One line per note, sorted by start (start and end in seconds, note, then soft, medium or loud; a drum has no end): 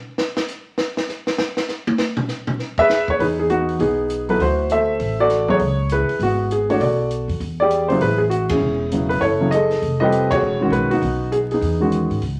0.18 snare loud
0.37 snare loud
0.48 hi-hat pedal medium
0.78 snare loud
0.97 snare loud
1.09 snare soft
1.09 hi-hat pedal medium
1.27 snare loud
1.38 snare loud
1.57 snare medium
1.69 snare soft
1.69 hi-hat pedal medium
1.87 high tom loud
1.98 snare medium
2.17 floor tom loud
2.28 snare soft
2.28 hi-hat pedal medium
2.47 floor tom loud
2.59 snare soft
2.78 3.18 G#4 medium
2.78 3.18 B4 medium
2.78 3.06 E5 loud
2.78 kick medium
2.90 snare medium
2.90 hi-hat pedal medium
3.08 3.20 C#5 medium
3.08 kick medium
3.19 3.76 E2 medium
3.19 3.50 D#4 medium
3.19 3.38 G#4 medium
3.19 3.25 B4 medium
3.19 kick soft
3.19 open hi-hat soft
3.39 3.49 G#4 medium
3.50 3.79 B3 medium
3.50 3.79 D#4 medium
3.50 3.80 F#4 medium
3.50 closed hi-hat soft
3.69 open hi-hat soft
3.79 4.36 B1 medium
3.79 4.28 B3 medium
3.79 4.36 D#4 medium
3.79 4.25 G#4 medium
3.79 kick soft
3.79 open hi-hat soft
4.10 closed hi-hat medium
4.29 4.39 F#3 medium
4.29 4.39 B3 medium
4.29 4.39 E4 medium
4.29 4.39 A4 medium
4.29 4.40 B4 medium
4.29 open hi-hat soft
4.39 4.97 D2 medium
4.39 4.97 E4 medium
4.39 4.97 F#4 medium
4.39 4.70 C5 medium
4.39 kick soft
4.39 open hi-hat soft
4.69 5.19 A4 medium
4.69 5.27 C5 medium
4.69 5.21 E5 medium
4.69 closed hi-hat soft
5.00 5.57 A1 medium
5.00 kick soft
5.00 open hi-hat soft
5.20 5.58 F#4 medium
5.20 5.58 A4 medium
5.20 5.50 D5 loud
5.30 snare soft
5.30 closed hi-hat soft
5.48 5.59 F#3 medium
5.48 5.59 B3 medium
5.48 5.59 E4 medium
5.48 5.59 G#4 medium
5.48 5.92 C#5 loud
5.48 kick medium
5.59 6.05 C#2 medium
5.59 kick soft
5.59 open hi-hat soft
5.89 6.48 G#4 medium
5.89 6.19 B4 medium
5.89 closed hi-hat soft
5.93 6.48 E4 medium
6.08 muted upright bass stroke soft
6.08 open hi-hat soft
6.19 6.77 G#1 medium
6.19 6.78 B3 medium
6.19 6.49 F#4 medium
6.19 kick soft
6.19 open hi-hat soft
6.51 6.69 G#4 medium
6.51 closed hi-hat soft
6.69 6.79 E3 medium
6.69 6.79 A3 medium
6.69 6.80 D4 medium
6.69 6.80 F#4 medium
6.69 6.81 C#5 medium
6.69 open hi-hat soft
6.80 7.26 B1 medium
6.80 7.37 F#4 medium
6.80 7.37 A4 medium
6.80 7.09 D5 medium
6.80 kick soft
6.80 open hi-hat soft
7.11 closed hi-hat soft
7.28 7.39 F2 medium
7.28 open hi-hat soft
7.40 7.98 E2 medium
7.40 kick soft
7.40 open hi-hat soft
7.60 8.00 G4 medium
7.60 7.99 G#4 medium
7.60 7.88 D5 medium
7.70 closed hi-hat medium
7.88 8.00 C#3 medium
7.88 8.00 F#3 medium
7.88 8.00 B3 medium
7.88 8.01 E4 medium
7.88 8.01 C5 medium
7.88 open hi-hat soft
8.01 8.58 A1 medium
8.01 8.51 E4 medium
8.01 8.17 G#4 medium
8.01 8.19 B4 medium
8.01 kick soft
8.01 open hi-hat soft
8.18 8.23 G#4 medium
8.30 8.50 F#4 medium
8.30 closed hi-hat medium
8.49 9.07 C#4 medium
8.49 8.92 E4 medium
8.49 9.12 G#4 medium
8.49 kick medium
8.49 ride medium
8.61 9.18 E1 medium
8.91 9.22 C#3 medium
8.91 9.22 F#3 soft
8.91 9.22 B3 medium
8.91 9.22 E4 medium
8.91 closed hi-hat medium
9.09 9.20 B4 medium
9.09 open hi-hat soft
9.21 9.78 F#1 medium
9.21 9.41 E4 medium
9.21 9.53 A4 medium
9.21 9.52 C#5 loud
9.21 kick soft
9.21 open hi-hat soft
9.40 9.50 C#3 medium
9.40 9.51 F#3 medium
9.40 9.51 B3 medium
9.40 9.51 E4 medium
9.51 9.81 G#4 medium
9.51 9.98 A4 medium
9.51 9.96 D#5 loud
9.51 closed hi-hat medium
9.71 snare soft
9.71 open hi-hat soft
9.82 10.39 F1 medium
9.82 kick soft
9.82 open hi-hat soft
10.00 10.39 G3 medium
10.00 10.40 C4 medium
10.00 10.40 F4 medium
10.00 10.41 G4 medium
10.00 10.41 A4 medium
10.00 10.40 B4 medium
10.00 10.31 D#5 loud
10.12 closed hi-hat soft
10.31 10.61 F#4 medium
10.31 10.88 G#4 medium
10.31 10.73 C#5 loud
10.31 kick medium
10.31 ride medium
10.41 10.69 E1 medium
10.61 11.00 D#3 medium
10.61 11.00 G#3 medium
10.61 11.00 C#4 medium
10.61 10.89 F#4 medium
10.70 10.99 B1 medium
10.70 10.91 B4 medium
10.70 closed hi-hat soft
10.91 11.48 B3 medium
10.91 11.48 D#4 medium
10.91 11.33 F#4 medium
10.91 open hi-hat soft
11.02 11.59 B1 medium
11.02 kick soft
11.02 open hi-hat soft
11.32 11.37 G#4 medium
11.32 closed hi-hat medium
11.51 12.08 B3 medium
11.51 12.08 D#4 medium
11.51 12.07 G#4 medium
11.51 open hi-hat soft
11.61 12.07 E2 medium
11.61 kick soft
11.61 open hi-hat soft
11.80 12.20 D#3 medium
11.80 12.20 G#3 medium
11.80 12.20 C#4 medium
11.80 12.20 F#4 medium
11.92 closed hi-hat soft
12.10 12.21 G#2 medium
12.10 open hi-hat soft
12.22 12.40 C#2 medium
12.22 kick soft
12.22 open hi-hat soft